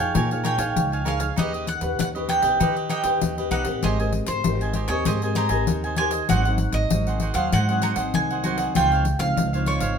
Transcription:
Already playing: upright bass F2, nylon-string guitar F3 D#4 G#4 C#5, cavaquinho F5 G#5, mandolin G5
0.00 cavaquinho C#5
0.14 upright bass A#2, nylon-string guitar A#3, cavaquinho A#4 C#5 F5 G#5, pandeiro
0.31 nylon-string guitar D#4 G#4 C#5, cavaquinho C#5 F5 G#5, pandeiro
0.44 cavaquinho A#4 C#5 F5 G#5, mandolin G5, pandeiro
0.58 upright bass A#1, nylon-string guitar D#4 G#4 C#5, cavaquinho C#5 F5 G#5, pandeiro
0.75 upright bass C#2, nylon-string guitar F3, pandeiro
0.92 cavaquinho C#5 F5 G#5, pandeiro
1.05 nylon-string guitar D#4 G#4 C#5, cavaquinho A#4 C#5 F5 G#5, mandolin F5, pandeiro
1.19 cavaquinho C#5 F5 G#5, pandeiro
1.36 upright bass D#2, nylon-string guitar D#3 C#4 G4 B4, cavaquinho D#4 G4 B4 D#5, mandolin D#5, pandeiro
1.53 cavaquinho G4 B4 D#5, pandeiro
1.67 mandolin F#5, muted cavaquinho stroke, pandeiro
1.81 upright bass D#2, nylon-string guitar C#4 G4 B4, muted cavaquinho stroke, pandeiro
1.99 upright bass D#2, nylon-string guitar D#3, mandolin F#5, pandeiro
2.15 nylon-string guitar C#4 G4 B4, cavaquinho G4 B4 D#5, pandeiro
2.28 cavaquinho D#4 G4 B4 D#5, mandolin G5, pandeiro
2.42 upright bass B1, nylon-string guitar C#4 G4 B4, cavaquinho G4 B4 D#5, pandeiro
2.60 nylon-string guitar D#3 C#4 G4 B4, upright bass D#3, cavaquinho D#4 G4 B4 D#5, pandeiro
2.76 cavaquinho G4 B4 D#5, pandeiro
2.89 cavaquinho D#4 G4 B4 D#5, mandolin G5, pandeiro
3.03 upright bass D#2, nylon-string guitar C#4 G4 B4, cavaquinho G4 B4 D#5, pandeiro
3.22 upright bass D#2, nylon-string guitar D#3, pandeiro
3.37 nylon-string guitar C#4 G4 B4, cavaquinho G4 B4 D#5, pandeiro
3.51 upright bass B1, cavaquinho D#4 G4 B4 D#5, mandolin F#5, pandeiro
3.65 upright bass A1, nylon-string guitar C4 G4 A#4, cavaquinho G4 B4 D#5, pandeiro
3.83 upright bass G#1, nylon-string guitar G#3, cavaquinho G4 C5 D#5 G#5, mandolin D#5, pandeiro
3.99 nylon-string guitar C4 G4 A#4, cavaquinho C5 D#5 G#5, pandeiro
4.13 muted cavaquinho stroke, pandeiro
4.26 upright bass G#1, mandolin C5, muted cavaquinho stroke, pandeiro
4.44 upright bass G#1, nylon-string guitar D#3 C4 G4 A#4, pandeiro
4.61 cavaquinho C5 D#5 G#5, pandeiro
4.73 cavaquinho G4 C5 D#5 G#5, pandeiro
4.88 upright bass D#2, nylon-string guitar C4 G4 A#4, cavaquinho C5 D#5 G#5, mandolin C#5, pandeiro
5.05 upright bass G#2, nylon-string guitar G#3, cavaquinho G4 C5 D#5 G#5, mandolin D#5, pandeiro
5.22 nylon-string guitar C4 G4 A#4, cavaquinho C5 D#5 G#5, pandeiro
5.35 cavaquinho G4 C5 D#5 G#5, mandolin A#5, pandeiro
5.49 upright bass G#1, nylon-string guitar C4 G4 A#4, cavaquinho C5 D#5 G#5, pandeiro
5.67 upright bass D#2, nylon-string guitar D#3, pandeiro
5.84 cavaquinho C5 D#5 G#5, pandeiro
5.96 nylon-string guitar C4 G4 A#4, cavaquinho G4 C5 D#5 G#5, mandolin G#5, pandeiro
6.11 cavaquinho C5 D#5 G#5, pandeiro
6.29 upright bass G#1, nylon-string guitar G#2 F#3 C4 D#4, cavaquinho F#4 G#4 C5 F#5, mandolin F#5, pandeiro
6.45 nylon-string guitar F#3 C4 D#4, cavaquinho G#4 C5 F#5, pandeiro
6.58 muted cavaquinho stroke, pandeiro
6.72 upright bass G#1, mandolin D#5, muted cavaquinho stroke, pandeiro
6.90 upright bass G#1, nylon-string guitar D#3 F#3 C4 D#4, pandeiro
7.07 cavaquinho G#4 C5 F#5, pandeiro
7.20 cavaquinho F#4 G#4 C5 F#5, pandeiro
7.34 upright bass D#2, nylon-string guitar F#3 C4 D#4, cavaquinho G#4 C5 F#5, mandolin F5, pandeiro
7.52 nylon-string guitar G#2, upright bass G#2, cavaquinho F#4 G#4 C5 F#5, mandolin F#5, pandeiro
7.69 nylon-string guitar F#3 C4 D#4, cavaquinho G#4 C5 F#5, pandeiro
7.82 cavaquinho F#4 G#4 C5 F#5, mandolin A#5, pandeiro
7.96 upright bass G#1, nylon-string guitar F#3 C4 D#4, cavaquinho G#4 C5 F#5, pandeiro
8.14 upright bass C2, nylon-string guitar D#3, mandolin G#5, pandeiro
8.30 cavaquinho G#4 C5 F#5, pandeiro
8.44 nylon-string guitar F#3 C4 D#4, cavaquinho F#4 G#4 C5 F#5, pandeiro
8.58 cavaquinho G#4 C5 F#5, pandeiro
8.75 upright bass C#2, nylon-string guitar C#3 F3 C4 D#4, cavaquinho F4 C5 C#5 F5, mandolin G5, pandeiro
8.92 cavaquinho C5 C#5 F5, pandeiro
9.05 muted cavaquinho stroke, pandeiro
9.19 upright bass C#2, nylon-string guitar F3 C4 D#4, mandolin F5, muted cavaquinho stroke, pandeiro
9.37 upright bass C#2, nylon-string guitar G#2, pandeiro
9.53 nylon-string guitar F3 C4 D#4, cavaquinho C5 C#5 F5, pandeiro
9.66 cavaquinho F4 C5 C#5 F5, mandolin C#5, pandeiro
9.80 upright bass G#1, cavaquinho C5 C#5 F5, pandeiro

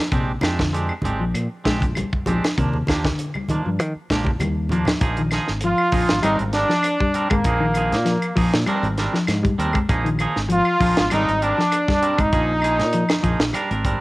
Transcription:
0.12 fingered electric bass A#1, clean electric guitar C3 G#3 C4 D4 G4, kick, closed hi-hat
0.41 fingered electric bass F2, clean electric guitar G#3 C4 D4 G4, snare, closed hi-hat, high conga, claves
0.59 clean electric guitar D3, kick, snare
0.73 clean electric guitar G#3 C4 D4 G4, closed hi-hat
0.89 claves
1.02 fingered electric bass G#1, clean electric guitar G#3 C4 D4 G4, closed hi-hat, high conga, low conga
1.20 fingered electric bass A#1, clean electric guitar F3
1.34 fingered electric bass A#2, closed hi-hat, claves
1.64 fingered electric bass A#1, clean electric guitar G#3 C4 D4 G4, kick, snare, closed hi-hat
1.80 kick, closed hi-hat, high conga
1.95 clean electric guitar G3, closed hi-hat, high conga, claves
2.13 muted fingered electric bass stroke, kick
2.26 fingered electric bass A#1, clean electric guitar F3 G#3 C4 D4 G4, closed hi-hat, high conga, low conga
2.44 muted fingered electric bass stroke, snare, closed hi-hat, claves
2.58 fingered electric bass D#2, clean electric guitar C3 F3 A#3 D4, muted clean electric guitar stroke, kick, closed hi-hat
2.73 high conga
2.87 fingered electric bass D#2, clean electric guitar F3 A#3 D4 G4, kick, snare, closed hi-hat, high conga, claves
3.04 clean electric guitar D3, kick, snare
3.19 closed hi-hat
3.34 clean electric guitar G3, high conga, claves
3.49 fingered electric bass D#3, clean electric guitar F3 A#3 D4, closed hi-hat, high conga, low conga
3.66 fingered electric bass G2, clean electric guitar F3
3.79 fingered electric bass D#3, closed hi-hat, claves
3.95 muted fingered electric bass stroke
4.10 fingered electric bass A#1, clean electric guitar F3 G#3 A#3 D4 G4, kick, snare, closed hi-hat
4.25 kick, high conga
4.39 fingered electric bass D#2, clean electric guitar G3, closed hi-hat, high conga, claves
4.69 clean electric guitar F3 A#3 D4, muted clean electric guitar stroke, closed hi-hat, low conga
4.85 snare, closed hi-hat, low conga, claves
5.01 fingered electric bass A#1, clean electric guitar F3 A#3 D#4 G#4, kick, closed hi-hat
5.17 clean electric guitar D#3, closed hi-hat
5.31 clean electric guitar F3 D#4 G#4, snare, closed hi-hat, claves
5.48 fingered electric bass G#1, snare
5.61 clean electric guitar F3, closed hi-hat
5.65 trombone F4, trumpet F4
5.78 claves
5.92 fingered electric bass A#1, clean electric guitar F3 A#3 D#4 G#4, kick, open hi-hat
6.09 fingered electric bass G#1, snare, closed hi-hat
6.23 fingered electric bass G#1, clean electric guitar G3 C4 D4 A#4, trombone D#4, trumpet D#4, closed hi-hat, claves
6.39 fingered electric bass G#1, closed hi-hat
6.53 clean electric guitar G3 D4 A#4, trombone D4, trumpet D4, snare, closed hi-hat
6.69 clean electric guitar F3, snare
6.83 closed hi-hat, claves
7.00 clean electric guitar G3, kick
7.14 clean electric guitar G3 C4 D4 A#4, closed hi-hat
7.30 fingered electric bass G#1, clean electric guitar G#3, trombone A#3, trumpet A#3, kick, closed hi-hat, claves
7.44 fingered electric bass A#1, clean electric guitar F3 A#3 D#4 G#4, kick, closed hi-hat
7.60 clean electric guitar D#3
7.74 clean electric guitar F3 A#3 D#4 G#4, closed hi-hat, claves
7.92 fingered electric bass A#2, snare, closed hi-hat
8.05 clean electric guitar F3, snare, closed hi-hat
8.22 closed hi-hat, claves
8.36 fingered electric bass A#1, clean electric guitar F3 A#3 D#4 G#4, kick, open hi-hat
8.54 fingered electric bass A#2, snare
8.66 clean electric guitar G3 C4 D4 A#4, muted fingered electric bass stroke, closed hi-hat, claves
8.83 fingered electric bass G#1, closed hi-hat
8.98 clean electric guitar G3 C4 D4 A#4, snare, closed hi-hat
9.13 clean electric guitar F3, snare
9.27 fingered electric bass G#2, snare, closed hi-hat, claves
9.43 clean electric guitar G3, kick, closed hi-hat
9.58 fingered electric bass D#2, clean electric guitar G3 C4 D4 A#4, closed hi-hat
9.73 clean electric guitar G#3, kick, closed hi-hat, claves
9.89 fingered electric bass A#1, clean electric guitar F3 A#3 D#4 G#4, kick, closed hi-hat
10.05 clean electric guitar D#3, closed hi-hat
10.19 clean electric guitar F3 A#3 D#4 G#4, closed hi-hat, claves
10.36 fingered electric bass G#1, snare
10.49 clean electric guitar F3, trombone F4, closed hi-hat
10.54 trumpet F4
10.65 claves
10.80 fingered electric bass A#1, clean electric guitar F3 A#3 D#4 G#4, kick, open hi-hat
10.97 fingered electric bass G#1, snare, closed hi-hat
11.10 fingered electric bass G#1, clean electric guitar G3 C4 D4 A#4, trumpet D#4, trombone D#4, closed hi-hat, claves
11.29 fingered electric bass G#1, closed hi-hat
11.42 clean electric guitar G3 C4 D4 A#4, trombone D4, trumpet D4, closed hi-hat
11.58 clean electric guitar F3, snare
11.72 closed hi-hat, claves
11.88 clean electric guitar G3, kick, snare
12.02 clean electric guitar G3 C4 D4 A#4, closed hi-hat
12.18 fingered electric bass G#1, clean electric guitar G#3, trombone D#4, trumpet D#4, kick, closed hi-hat, claves
12.33 fingered electric bass A#1, clean electric guitar F3 A#3 D#4 G#4, kick, closed hi-hat
12.62 clean electric guitar F3 A#3 D#4 G#4, closed hi-hat, claves
12.79 fingered electric bass A#2, snare, closed hi-hat
12.93 clean electric guitar F3, closed hi-hat
13.09 snare, closed hi-hat, claves
13.23 fingered electric bass A#1, clean electric guitar F3 A#3 D#4 G#4, kick, closed hi-hat
13.39 fingered electric bass A#1, snare
13.54 clean electric guitar G3 D4 A#4, muted clean electric guitar stroke, closed hi-hat, claves
13.71 fingered electric bass G#1, clean electric guitar C4 D4 A#4, closed hi-hat
13.85 clean electric guitar G3 C4 D4 A#4, kick, closed hi-hat

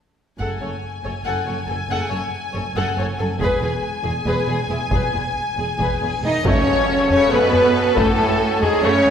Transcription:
0.39 double bass section F#1, cello section F#2, french horn section A3 G#4, viola section A4, violin section F#5 G#5, taiko
0.60 double bass section F#1, cello section F#2, viola section A4, violin section C#5
1.03 double bass section F#1, cello section F#2, viola section A4, violin section C#5, taiko
1.24 double bass section F#1, cello section F#2, viola section A4, violin section F#5
1.45 double bass section F#1, cello section F#2, viola section A4, violin section C#5
1.67 double bass section F#1, cello section F#2, violin section A4, viola section A4
1.89 double bass section F#1, cello section F#2, french horn section A3 G#4, viola section A4, violin section F#5
2.10 double bass section F#1, cello section F#2, viola section A4, violin section C#5
2.54 double bass section F#1, cello section F#2, viola section A4, violin section C#5
2.76 double bass section F#1, cello section F#2, viola section A4, violin section F#5
2.97 double bass section F#1, cello section F#2, viola section A4, violin section C#5
3.18 double bass section F#1, cello section F#2, viola section A4, violin section A4
3.39 double bass section E1, cello section E2, french horn section B3 G#4, viola section G#4, violin section B4 G#5, taiko
3.61 double bass section E1, cello section E2, viola section G#4, violin section G#4
4.04 double bass section E1, cello section E2, violin section G#4, viola section G#4
4.26 double bass section E1, cello section E2, viola section G#4, violin section B4
4.47 double bass section E1, cello section E2, viola section G#4, violin section G#4
4.69 double bass section E1, cello section E2, violin section E4, viola section G#4
4.91 double bass section E1, cello section E2, french horn section B3 G#4, viola section G#4, violin section B4, taiko, reverse cymbal
5.13 double bass section E1, cello section E2, viola section G#4, violin section G#4
5.57 double bass section E1, cello section E2, viola section G#4, violin section G#4
5.78 double bass section E1, cello section E2, viola section G#4, violin section B4, taiko
6.01 double bass section E1, cello section E2, viola section G#4, violin section G#4
6.21 double bass section E1, cello section E2 D#4, trombone section D#3, viola section G#4, flute D#5, french horn section D#5
6.25 violin section E4 D#5
6.44 double bass section F#2, timpani F#2, trombone section C#3, viola section A3 A4, cello section C#4, string section C#4 F#4 A4 G#5, flute C#5, french horn section C#5, violin section C#5, taiko, sub drop
6.66 double bass section F#2, viola section G#3
7.08 trombone section C#3, cello section C#4, flute C#5, french horn section C#5, violin section C#5, taiko low-mid
7.30 double bass section F#2, trombone section B2, viola section A3, cello section B3, violin section B4, french horn section B4, flute B4
7.52 double bass section F#2, viola section G#3, taiko low-mid
7.94 double bass section F#2, trombone section A2, cello section A3, viola section A3, violin section A4, flute A4, french horn section A4, taiko
8.18 double bass section F#2, viola section G#3
8.59 trombone section G#2, cello section G#3, french horn section G#4, violin section G#4, flute G#4, taiko low-mid
8.82 double bass section F#2, trombone section C#3, viola section A3, cello section C#4, french horn section C#5, flute C#5, violin section C#5
9.04 double bass section F#2, viola section G#3, taiko low-mid

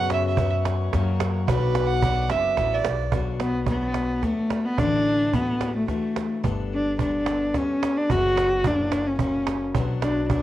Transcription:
Already playing: steel-string acoustic guitar F#2 C#3 F#3 B3 C#4 F#4, upright bass F#2, string section B4 C#5 F#5 C#6, fiddle F#5
0.10 fiddle E5, cajon slap
0.27 fiddle E5
0.37 steel-string acoustic guitar F#3 B3 C#4, cajon bass
0.42 steel-string acoustic guitar F#4
0.65 cajon slap
0.93 upright bass F#2, steel-string acoustic guitar F#3 A#3 C#4 F#4, string section A#4, cajon bass, cajon slap
1.20 cajon slap
1.47 upright bass B1, steel-string acoustic guitar B2 F#3 B3 D4 F#4, fiddle B4, string section B4 D5 D6, cajon bass
1.75 cajon slap
1.87 fiddle F#5
2.02 steel-string acoustic guitar F#3 B3 D4 F#4, cajon bass
2.30 upright bass F#1, fiddle E5, cajon slap
2.57 upright bass A1, steel-string acoustic guitar F#3 B3 D4 F#4, cajon bass, cajon slap
2.70 fiddle D5, cajon slap
2.85 upright bass B1, cajon slap
3.12 upright bass B1, steel-string acoustic guitar B2 F#3 B3 D4 F#4, cajon bass
3.40 cello B3, cajon slap
3.66 steel-string acoustic guitar F#3 B3, cello B3, cajon bass
3.71 steel-string acoustic guitar D4 F#4
3.94 cajon slap
4.23 steel-string acoustic guitar F#3 B3 D4 F#4, cello A3, cajon bass, cajon slap
4.50 steel-string acoustic guitar D4 F#4, cajon slap
4.55 steel-string acoustic guitar B3
4.65 cello B3
4.78 upright bass A1, steel-string acoustic guitar A2 D3 E3 A3, cello D4, cajon bass
4.82 steel-string acoustic guitar D4 F#4
5.33 steel-string acoustic guitar E3 A3 D4 F#4, cello B3, cajon bass
5.61 steel-string acoustic guitar E3 A3 D4 F#4, cajon slap
5.76 cello A3
5.88 steel-string acoustic guitar E3 A3 D4 F#4, cello A3, cajon bass, cajon slap
6.16 cajon slap
6.44 upright bass G1, steel-string acoustic guitar G3 B3 D4 A4, cajon bass
6.74 cello D4
6.99 steel-string acoustic guitar G3 B3 D4 A4, cello D4, cajon bass
7.26 steel-string acoustic guitar B3 D4 A4, cajon slap
7.54 steel-string acoustic guitar G3 B3 A4, cello C#4, cajon bass, cajon slap
7.83 cajon slap
7.97 cello D4
8.10 upright bass F#1, steel-string acoustic guitar F#2 C#3 F#3 B3 C#4 F#4, cello F#4, cajon bass
8.24 cajon slap
8.37 cajon slap
8.64 upright bass F#1, steel-string acoustic guitar F#3 A#3, cello D4, cajon bass
8.68 steel-string acoustic guitar F#4
8.92 cajon slap
9.07 cello C#4
9.19 steel-string acoustic guitar F#3 A#3 C#4, cello C#4, cajon bass
9.24 steel-string acoustic guitar F#4
9.47 cajon slap
9.75 upright bass B1, steel-string acoustic guitar B2 F#3 B3 D4 F#4, cajon bass
10.02 cello D4, cajon slap
10.30 steel-string acoustic guitar F#3 B3 D4 F#4, cello D4, cajon bass

